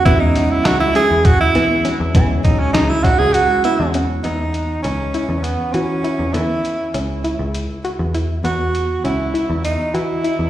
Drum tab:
HH |xxxxxxx|xxxxxxx|xxxxxxx|xxxxxxx|
SD |-ooo-oo|--oo---|-------|-------|
BD |o---o--|oo-o---|-------|-------|

HH |xxxxxxx|
SD |-------|
BD |-------|